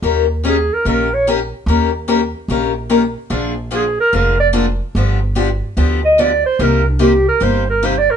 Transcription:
X:1
M:4/4
L:1/8
Q:"Swing" 1/4=146
K:Eb
V:1 name="Clarinet"
z2 A B B _d z2 | z8 | z2 A B B d z2 | z4 z e d c |
B D G B c B (3c d B |]
V:2 name="Steel-string acoustic guitar"
[E,B,_DGB] z [E,B,DGB] z [E,B,DGB] z [E,B,DGB] z | [E,B,_DGB] z [E,B,DGB] z [E,B,DGB] z [E,B,DGB] z | [D,F,B,DA] z [D,F,B,DA] z [D,F,B,DA] z [D,F,B,DA] z | [D,F,=B,DG] z [D,F,B,DG] z [D,F,B,DG] z [D,F,B,DG] z |
[C,G,B,EG] z [C,G,B,EG] z [C,G,B,EG] z [C,G,B,EG] z |]
V:3 name="Upright bass" clef=bass
E,,4 B,,,4 | E,,4 B,,,4 | B,,,4 F,,,4 | G,,,4 D,,4 |
C,,4 G,,,4 |]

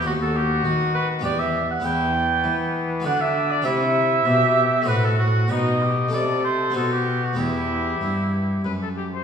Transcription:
X:1
M:3/4
L:1/16
Q:1/4=99
K:Em
V:1 name="Oboe"
F A G2 F2 B2 d e2 f | g6 z2 f e2 d | e8 B A F2 | ^d4 =d2 c2 A G2 F |
E8 z4 |]
V:2 name="Trumpet"
F8 G2 z2 | E2 B,6 D4 | E4 G4 F4 | ^D2 G2 A4 F4 |
G8 B A G c |]
V:3 name="Harpsichord"
[B,F]8 [B,GB]4 | [B,EB]8 [B,FB]4 | [Gc]8 [A,Fc]4 | [FB]4 [A,EA]4 [B,^DF]4 |
[B,EG]12 |]
V:4 name="Harpsichord" clef=bass
^D,,4 ^D,4 E,,4 | E,,4 E,4 D,4 | C,4 B,,4 A,,4 | B,,4 C,4 B,,4 |
E,,4 G,,4 F,,4 |]
V:5 name="Cello" clef=bass
^D,,4 ^D,4 E,,4 | E,,4 E,4 D,4 | C,4 B,,4 A,,4 | B,,4 C,4 B,,4 |
E,,4 G,,4 F,,4 |]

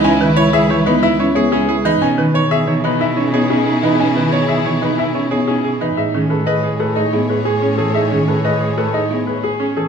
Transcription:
X:1
M:6/4
L:1/8
Q:1/4=182
K:Alyd
V:1 name="Grand piano"
g z c e z B e z c G z B | g z c e z B e z c G z B | g z c e z B e z c G z B | e z B d z A d z B G z A |
e z B d z A d z B G z A |]
V:2 name="Grand piano"
C B c G c D E c G C G D | C B c G c D E c G C G D | C B c G c D E c G C G D | D C A B G B D E z G C G |
D C A B G B D E z G C G |]
V:3 name="Violin section"
[EB]8- [EB]3 z | [EG]12- | [EG]8- [EG]3 z | [Gc]12- |
[Gc]8- [Gc]3 z |]
V:4 name="French horn"
E E E E E E E E E E E z | D D D D D D D D D D D D | D D D D D D D D D D D z | G G G G G G G G G G G G |
G G G G G G G G G G G z |]
V:5 name="Marimba" clef=bass
z D, z2 E, B, z C B, z2 E, | z D, z2 E, B, z C B, z2 E, | z D, z2 E, B, z C B, z2 E, | z D, z3 A, z B, z3 E, |
z D, z3 A, z B, z3 E, |]
V:6 name="Cello" clef=bass
C,,12 | B,,12- | B,,12 | A,,12- |
A,,12 |]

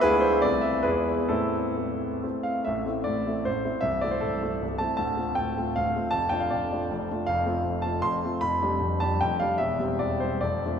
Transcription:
X:1
M:3/4
L:1/16
Q:1/4=152
K:Am
V:1 name="Grand piano"
[E^GB]2 c2 d2 e2 [EGB]4 | [CEA]8 z2 f2 | e4 d4 c4 | e2 d c A6 a2 |
a4 g4 f4 | a2 g f d6 z2 | [K:C] f6 a2 c'4 | b6 a2 g2 f2 |
e4 d2 c2 d4 |]
V:2 name="Grand piano"
[D,,^G,B,]4 [C,,A,CE]4 [E,,G,B,]4 | A,,4 [A,CE]4 [A,CE]4 | [A,,,A,,]2 [A,CE]2 [A,,,A,,]2 [A,CE]2 [A,,,A,,]2 [A,CE]2 | [C,,,C,,]2 [A,CE]2 [C,,,C,,]2 [A,CE]2 [C,,,C,,]2 [A,CE]2 |
[D,,,D,,]2 [A,CF]2 [D,,,D,,]2 [A,CF]2 [D,,,D,,]2 [A,CF]2 | [F,,,F,,]2 [A,DF]2 [F,,,F,,]2 [A,DF]2 [F,,,F,,]2 [A,DF]2 | [K:C] [F,,,F,,]2 [A,CF]2 [F,,,F,,]2 [A,CF]2 [F,,,F,,]2 [A,CF]2 | [F,,,F,,]2 [G,DG]2 [F,,,F,,]2 [G,DG]2 [F,,,F,,]2 [G,DG]2 |
[E,,,E,,]2 [G,CG]2 [E,,,E,,]2 [G,CG]2 [F,,,F,,]2 [A,DF]2 |]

